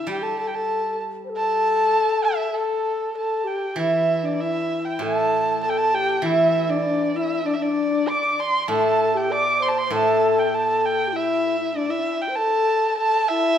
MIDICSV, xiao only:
0, 0, Header, 1, 2, 480
1, 0, Start_track
1, 0, Tempo, 614125
1, 68, Time_signature, 2, 2, 24, 8
1, 10616, End_track
2, 0, Start_track
2, 0, Title_t, "Xiao"
2, 0, Program_c, 0, 77
2, 0, Note_on_c, 0, 64, 67
2, 73, Note_on_c, 0, 67, 71
2, 85, Note_off_c, 0, 64, 0
2, 172, Note_on_c, 0, 69, 68
2, 184, Note_off_c, 0, 67, 0
2, 300, Note_off_c, 0, 69, 0
2, 306, Note_on_c, 0, 69, 61
2, 408, Note_off_c, 0, 69, 0
2, 423, Note_on_c, 0, 69, 60
2, 765, Note_off_c, 0, 69, 0
2, 973, Note_on_c, 0, 72, 59
2, 1018, Note_on_c, 0, 69, 97
2, 1030, Note_off_c, 0, 72, 0
2, 1956, Note_off_c, 0, 69, 0
2, 1961, Note_on_c, 0, 69, 84
2, 2422, Note_off_c, 0, 69, 0
2, 2448, Note_on_c, 0, 69, 72
2, 2690, Note_on_c, 0, 67, 65
2, 2702, Note_off_c, 0, 69, 0
2, 2943, Note_on_c, 0, 64, 69
2, 2955, Note_off_c, 0, 67, 0
2, 3308, Note_on_c, 0, 62, 68
2, 3320, Note_off_c, 0, 64, 0
2, 3445, Note_on_c, 0, 64, 76
2, 3457, Note_off_c, 0, 62, 0
2, 3923, Note_on_c, 0, 69, 80
2, 3935, Note_off_c, 0, 64, 0
2, 4391, Note_off_c, 0, 69, 0
2, 4396, Note_on_c, 0, 69, 83
2, 4573, Note_off_c, 0, 69, 0
2, 4573, Note_on_c, 0, 69, 50
2, 4637, Note_on_c, 0, 67, 76
2, 4648, Note_off_c, 0, 69, 0
2, 4875, Note_on_c, 0, 64, 88
2, 4887, Note_off_c, 0, 67, 0
2, 5233, Note_on_c, 0, 62, 83
2, 5245, Note_off_c, 0, 64, 0
2, 5296, Note_on_c, 0, 64, 69
2, 5308, Note_off_c, 0, 62, 0
2, 5360, Note_on_c, 0, 62, 84
2, 5371, Note_off_c, 0, 64, 0
2, 5590, Note_off_c, 0, 62, 0
2, 5594, Note_on_c, 0, 64, 78
2, 5810, Note_off_c, 0, 64, 0
2, 5814, Note_on_c, 0, 62, 83
2, 5922, Note_off_c, 0, 62, 0
2, 5932, Note_on_c, 0, 62, 79
2, 6310, Note_on_c, 0, 74, 86
2, 6322, Note_off_c, 0, 62, 0
2, 6581, Note_off_c, 0, 74, 0
2, 6788, Note_on_c, 0, 69, 91
2, 7151, Note_on_c, 0, 67, 82
2, 7163, Note_off_c, 0, 69, 0
2, 7276, Note_on_c, 0, 74, 89
2, 7288, Note_off_c, 0, 67, 0
2, 7456, Note_off_c, 0, 74, 0
2, 7456, Note_on_c, 0, 74, 51
2, 7502, Note_on_c, 0, 72, 81
2, 7514, Note_off_c, 0, 74, 0
2, 7694, Note_off_c, 0, 72, 0
2, 7701, Note_on_c, 0, 72, 65
2, 7755, Note_on_c, 0, 69, 89
2, 7767, Note_off_c, 0, 72, 0
2, 8217, Note_off_c, 0, 69, 0
2, 8222, Note_on_c, 0, 69, 86
2, 8654, Note_on_c, 0, 67, 55
2, 8666, Note_off_c, 0, 69, 0
2, 8704, Note_on_c, 0, 64, 88
2, 8715, Note_off_c, 0, 67, 0
2, 9061, Note_off_c, 0, 64, 0
2, 9066, Note_on_c, 0, 64, 76
2, 9176, Note_off_c, 0, 64, 0
2, 9179, Note_on_c, 0, 62, 74
2, 9299, Note_on_c, 0, 64, 75
2, 9310, Note_off_c, 0, 62, 0
2, 9599, Note_on_c, 0, 72, 55
2, 9610, Note_off_c, 0, 64, 0
2, 9672, Note_on_c, 0, 69, 88
2, 9683, Note_off_c, 0, 72, 0
2, 10131, Note_off_c, 0, 69, 0
2, 10136, Note_on_c, 0, 69, 77
2, 10366, Note_off_c, 0, 69, 0
2, 10394, Note_on_c, 0, 64, 93
2, 10616, Note_off_c, 0, 64, 0
2, 10616, End_track
0, 0, End_of_file